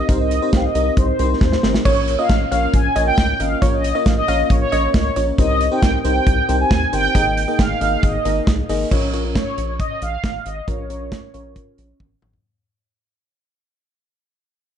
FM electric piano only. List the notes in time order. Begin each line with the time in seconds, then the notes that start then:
0.09 C4 D#4 G4 A#4 C5
0.42 C4 D#4 G4 A#4 C5
0.75 C4 D#4 G4 A#4 D#5
1.19 C4 D#4 G4 A#4 C5
1.64 C4 D#4 G4 A#4 C5
1.86 A#3 C#4 F4 A#4 C#5
2.19 A#3 C#4 F4 A#4 C#5
2.52 A#3 C#4 F4 A#4 C#5
2.96 A#3 C#4 F4 A#4 C#5
3.40 A#3 C#4 F4 A#4 D#5
3.62 A#3 C#4 F4 A#4 C#5
3.95 A#3 C#4 F4 A#4 C#5
4.28 A#3 C#4 F4 A#4 C#5
4.72 A#3 C#4 F4 A#4 D#5
5.16 A#3 C#4 F4 A#4 C#5
5.38 C4 D#4 G4 A#4 C5
5.71 C4 D#4 G4 A#4 C5
6.04 C4 D#4 G4 A#4 C5
6.49 C4 D#4 G4 A#4 C5
6.93 C4 D#4 G4 A#4 C5
7.15 A#3 D#4 G#4 A#4 D#5
7.48 A#3 D#4 G#4 A#4 D#5
7.81 A#3 D#4 G#4 A#4 D#5
8.25 A#3 D#4 G#4 A#4 D#5
8.69 A#3 D#4 G#4 A#4 D#5
8.91 C#4 F4 A#4 C#5
9.13 C#4 F4 A#4 C#5
9.25 C#4 F4 A#4 C#5
10.68 C#4 F4 A#4 C#5
10.90 C#4 F4 A#4 C#5
11.34 C#4 F4 A#4 C#5